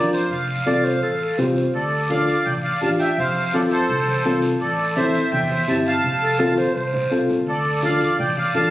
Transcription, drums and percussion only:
0.13 short guiro medium
0.31 high conga soft
0.31 long guiro medium
0.67 high conga medium
0.67 short guiro medium
0.85 short guiro medium
1.03 high conga soft
1.03 long guiro medium
1.38 high conga medium
1.38 low conga medium
1.38 short guiro medium
1.56 short guiro medium
1.74 high conga soft
1.74 long guiro medium
2.10 high conga medium
2.10 short guiro medium
2.28 short guiro medium
2.46 high conga soft
2.46 low conga medium
2.46 long guiro medium
2.82 high conga medium
2.82 short guiro medium
2.99 short guiro medium
3.17 high conga soft
3.17 low conga medium
3.17 long guiro medium
3.53 high conga medium
3.53 short guiro medium
3.71 short guiro medium
3.88 high conga soft
3.88 low conga medium
3.88 long guiro medium
4.08 high conga medium
4.24 high conga medium
4.24 short guiro medium
4.42 short guiro medium
4.60 high conga soft
4.60 long guiro medium
4.96 high conga medium
4.96 short guiro medium
5.14 short guiro medium
5.32 high conga soft
5.32 low conga medium
5.32 long guiro medium
5.50 high conga medium
5.68 high conga medium
5.68 short guiro medium
5.86 short guiro medium
6.04 high conga soft
6.04 low conga medium
6.04 long guiro medium
6.40 high conga medium
6.40 short guiro medium
6.58 high conga medium
6.58 short guiro medium
6.76 long guiro medium
6.93 low conga loud
7.11 short guiro medium
7.29 low conga medium
7.29 short guiro medium
7.47 high conga soft
7.47 long guiro medium
7.83 high conga medium
7.83 short guiro medium
8.00 high conga medium
8.00 short guiro medium
8.18 high conga soft
8.18 low conga medium
8.18 long guiro medium
8.36 high conga medium
8.54 high conga medium
8.54 short guiro medium

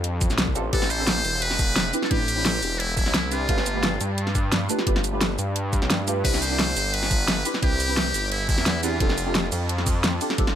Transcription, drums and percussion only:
0.04 closed hi-hat medium
0.21 kick loud
0.21 closed hi-hat medium
0.21 shaker medium
0.30 snare soft
0.30 shaker soft
0.38 snare loud
0.38 closed hi-hat medium
0.47 kick medium
0.56 closed hi-hat medium
0.56 shaker medium
0.73 kick loud
0.73 closed hi-hat medium
0.82 snare medium
0.90 closed hi-hat medium
0.90 shaker medium
1.07 snare loud
1.07 closed hi-hat medium
1.25 closed hi-hat medium
1.25 shaker medium
1.42 closed hi-hat medium
1.51 snare soft
1.59 kick loud
1.59 closed hi-hat medium
1.59 shaker medium
1.76 snare loud
1.76 closed hi-hat medium
1.94 closed hi-hat medium
1.94 shaker medium
2.03 snare medium
2.11 kick loud
2.11 closed hi-hat medium
2.28 closed hi-hat medium
2.28 shaker medium
2.45 snare loud
2.45 closed hi-hat medium
2.63 open hi-hat medium
2.63 shaker medium
2.80 closed hi-hat loud
2.97 kick loud
2.97 closed hi-hat medium
2.97 shaker medium
3.06 snare soft
3.14 snare loud
3.14 closed hi-hat medium
3.32 closed hi-hat medium
3.32 shaker medium
3.49 kick loud
3.49 closed hi-hat loud
3.58 snare medium
3.66 closed hi-hat medium
3.66 shaker medium
3.83 snare loud
3.83 closed hi-hat loud
4.01 closed hi-hat medium
4.01 shaker medium
4.18 closed hi-hat loud
4.27 snare soft
4.35 kick loud
4.35 closed hi-hat medium
4.35 shaker medium
4.52 snare loud
4.52 closed hi-hat loud
4.70 closed hi-hat medium
4.70 shaker medium
4.79 snare medium
4.87 kick loud
4.87 closed hi-hat medium
4.96 snare medium
5.04 closed hi-hat medium
5.04 shaker medium
5.21 snare loud
5.21 closed hi-hat loud
5.39 open hi-hat medium
5.39 shaker medium
5.56 closed hi-hat loud
5.73 kick loud
5.73 closed hi-hat medium
5.73 shaker medium
5.82 snare medium
5.90 snare loud
5.90 closed hi-hat loud
6.08 closed hi-hat medium
6.08 shaker medium
6.25 kick loud
6.25 closed hi-hat loud
6.25 crash medium
6.34 snare medium
6.42 closed hi-hat medium
6.42 ride medium
6.42 shaker medium
6.59 snare loud
6.59 closed hi-hat medium
6.77 closed hi-hat medium
6.77 ride medium
6.77 shaker medium
6.94 closed hi-hat loud
7.03 snare soft
7.11 kick loud
7.11 closed hi-hat medium
7.11 ride medium
7.11 shaker medium
7.28 snare loud
7.28 closed hi-hat loud
7.45 closed hi-hat medium
7.45 ride medium
7.45 shaker medium
7.54 snare medium
7.63 kick loud
7.63 closed hi-hat medium
7.80 closed hi-hat medium
7.80 ride medium
7.80 shaker medium
7.97 snare loud
7.97 closed hi-hat loud
8.14 open hi-hat medium
8.14 ride medium
8.14 shaker medium
8.32 closed hi-hat loud
8.49 kick loud
8.49 closed hi-hat medium
8.49 ride medium
8.49 shaker medium
8.58 snare soft
8.66 snare loud
8.66 closed hi-hat loud
8.83 closed hi-hat medium
8.83 ride medium
8.83 shaker medium
9.00 kick loud
9.00 closed hi-hat medium
9.10 snare medium
9.18 closed hi-hat medium
9.18 ride medium
9.18 shaker medium
9.35 snare loud
9.35 closed hi-hat medium
9.52 closed hi-hat medium
9.52 ride medium
9.52 shaker medium
9.69 closed hi-hat medium
9.78 snare soft
9.87 kick loud
9.87 closed hi-hat medium
9.87 ride medium
9.87 shaker medium
10.04 snare loud
10.04 closed hi-hat medium
10.21 closed hi-hat medium
10.21 ride medium
10.21 shaker medium
10.30 snare medium
10.38 kick loud
10.38 closed hi-hat medium
10.47 snare medium

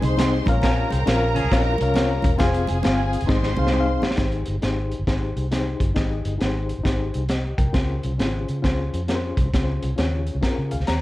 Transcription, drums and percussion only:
0.02 closed hi-hat medium
0.02 muted conga soft
0.02 low conga medium
0.17 snare loud
0.17 closed hi-hat loud
0.17 high conga medium
0.46 kick loud
0.46 closed hi-hat medium
0.46 high conga medium
0.62 kick loud
0.62 snare loud
0.62 closed hi-hat medium
0.62 muted conga soft
0.90 closed hi-hat medium
0.90 muted conga soft
1.07 snare loud
1.07 closed hi-hat medium
1.07 high conga medium
1.36 closed hi-hat medium
1.36 low conga medium
1.51 kick medium
1.51 snare loud
1.51 closed hi-hat medium
1.51 muted conga soft
1.78 closed hi-hat medium
1.78 muted conga medium
1.94 snare loud
1.94 closed hi-hat loud
1.94 high conga medium
2.22 kick loud
2.22 closed hi-hat medium
2.22 high conga medium
2.39 kick loud
2.39 snare loud
2.39 closed hi-hat medium
2.39 muted conga soft
2.54 closed hi-hat medium
2.67 closed hi-hat medium
2.67 muted conga soft
2.83 snare loud
2.83 closed hi-hat medium
2.83 high conga medium
3.13 closed hi-hat medium
3.21 closed hi-hat medium
3.29 kick loud
3.29 snare medium
3.43 snare medium
3.57 muted conga medium
3.57 low conga medium
3.67 snare medium
3.73 high conga medium
4.02 snare loud
4.02 high conga medium
4.11 snare medium
4.17 kick medium
4.17 snare medium
4.17 closed hi-hat medium
4.32 closed hi-hat soft
4.46 closed hi-hat medium
4.62 snare medium
4.62 closed hi-hat medium
4.91 closed hi-hat medium
5.07 kick medium
5.07 snare medium
5.07 closed hi-hat medium
5.37 closed hi-hat medium
5.52 snare medium
5.52 closed hi-hat medium
5.80 kick medium
5.80 closed hi-hat medium
5.96 kick medium
5.96 snare loud
5.96 closed hi-hat medium
6.25 closed hi-hat medium
6.41 snare loud
6.41 closed hi-hat medium
6.69 closed hi-hat medium
6.85 kick medium
6.85 snare medium
6.85 closed hi-hat medium
7.14 closed hi-hat medium
7.29 snare medium
7.29 closed hi-hat medium
7.58 kick medium
7.58 closed hi-hat medium
7.74 kick medium
7.74 snare loud
7.74 closed hi-hat medium
8.03 closed hi-hat medium
8.19 snare loud
8.19 closed hi-hat medium
8.48 closed hi-hat medium
8.64 kick medium
8.64 snare medium
8.64 closed hi-hat medium
8.94 closed hi-hat medium
9.08 snare medium
9.08 closed hi-hat medium
9.37 kick medium
9.37 closed hi-hat medium
9.54 kick medium
9.54 snare loud
9.54 closed hi-hat medium
9.83 closed hi-hat medium
9.98 snare loud
9.98 closed hi-hat medium
10.27 closed hi-hat medium
10.43 kick medium
10.43 snare medium
10.43 closed hi-hat medium
10.71 closed hi-hat medium
10.80 snare soft
10.87 snare medium
10.87 closed hi-hat medium

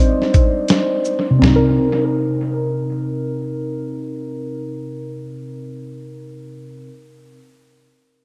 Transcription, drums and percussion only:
0.22 snare soft
0.34 kick medium
0.34 closed hi-hat soft
0.34 shaker soft
0.68 snare medium
0.68 closed hi-hat medium
1.05 shaker soft
1.42 snare loud
1.42 floor tom loud

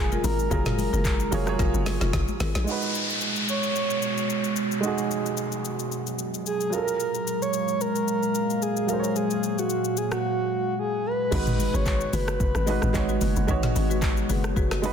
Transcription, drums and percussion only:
0.12 high conga medium
0.12 shaker soft
0.24 open hi-hat medium
0.24 high conga medium
0.24 low conga medium
0.24 shaker medium
0.39 shaker medium
0.51 kick loud
0.51 low conga medium
0.51 shaker medium
0.66 snare medium
0.66 mid tom loud
0.66 shaker medium
0.78 open hi-hat medium
0.78 high conga medium
0.78 shaker medium
0.94 shaker medium
1.05 kick loud
1.05 clap loud
1.05 shaker medium
1.20 shaker medium
1.32 open hi-hat medium
1.32 high conga medium
1.32 low conga medium
1.32 shaker loud
1.47 cross-stick loud
1.47 shaker medium
1.59 kick loud
1.59 snare medium
1.59 shaker medium
1.74 high conga medium
1.74 shaker medium
1.86 snare medium
1.86 open hi-hat soft
1.86 high conga medium
1.86 shaker medium
2.01 snare medium
2.01 shaker medium
2.13 kick medium
2.13 snare loud
2.13 low conga medium
2.13 shaker medium
2.28 high conga medium
2.28 shaker soft
2.40 snare loud
2.40 open hi-hat medium
2.40 high conga medium
2.40 low conga medium
2.40 shaker medium
2.55 snare loud
2.55 shaker medium
2.67 shaker medium
2.82 shaker medium
2.95 shaker medium
3.10 shaker medium
3.21 shaker medium
3.36 shaker soft
3.49 shaker medium
3.63 shaker soft
3.76 shaker medium
3.90 shaker medium
4.02 shaker medium
4.18 shaker soft
4.30 shaker medium
4.44 shaker soft
4.56 shaker medium
4.72 shaker medium
4.83 shaker medium
4.98 shaker medium
5.11 shaker medium
5.26 shaker medium
5.37 shaker medium
5.52 shaker soft
5.65 shaker medium
5.79 shaker soft
5.92 shaker medium
6.07 shaker medium
6.19 shaker medium
6.34 shaker soft
6.46 shaker medium
6.61 shaker soft
6.73 shaker medium
6.88 shaker medium
7.00 shaker medium
7.15 shaker medium
7.27 shaker medium
7.42 shaker medium
7.53 shaker medium
7.68 shaker medium
7.81 shaker medium
7.96 shaker soft
8.08 shaker medium
8.23 shaker medium
8.35 shaker medium
8.50 shaker medium
8.62 shaker medium
8.77 shaker soft
8.89 shaker medium
9.04 shaker medium
9.16 shaker medium
9.31 shaker medium
9.43 shaker medium
9.58 shaker medium
9.70 shaker medium
9.84 shaker soft
9.97 shaker medium
10.12 cross-stick loud
10.12 shaker soft
11.32 kick loud
11.32 crash medium
11.32 low conga medium
11.32 shaker medium
11.47 mid tom medium
11.47 shaker medium
11.59 open hi-hat medium
11.59 high conga medium
11.59 shaker medium
11.75 shaker medium
11.86 kick medium
11.86 clap loud
11.86 shaker medium
12.01 shaker medium
12.13 open hi-hat medium
12.13 high conga medium
12.13 low conga medium
12.13 shaker medium
12.28 cross-stick loud
12.28 shaker medium
12.40 kick loud
12.40 shaker medium
12.55 cross-stick loud
12.55 high conga medium
12.55 shaker medium
12.67 open hi-hat soft
12.67 high conga medium
12.67 shaker medium
12.82 cross-stick loud
12.82 mid tom medium
12.82 shaker medium
12.94 kick medium
12.94 clap medium
12.94 shaker medium
13.09 high conga medium
13.09 shaker soft
13.21 open hi-hat medium
13.21 high conga medium
13.21 low conga medium
13.21 shaker medium
13.36 shaker medium
13.48 kick loud
13.48 low conga medium
13.48 shaker medium
13.63 snare medium
13.63 mid tom medium
13.63 shaker medium
13.75 open hi-hat medium
13.75 high conga medium
13.75 shaker medium
13.91 shaker medium
14.02 kick medium
14.02 clap loud
14.02 shaker medium
14.17 shaker medium
14.30 open hi-hat medium
14.30 high conga medium
14.30 low conga medium
14.30 shaker loud
14.44 cross-stick loud
14.44 shaker medium
14.56 kick loud
14.56 shaker medium
14.71 cross-stick loud
14.71 snare medium
14.71 high conga soft
14.71 shaker medium
14.84 open hi-hat soft
14.84 high conga medium
14.84 shaker medium

